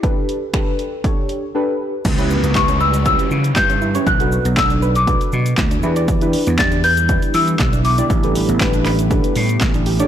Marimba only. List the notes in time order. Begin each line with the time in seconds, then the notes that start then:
2.55 C#6
2.81 E6
3.06 E6
3.56 G6
4.07 F#6
4.57 E6
4.96 D6
6.59 A6
6.84 G6
7.34 E6
7.85 D6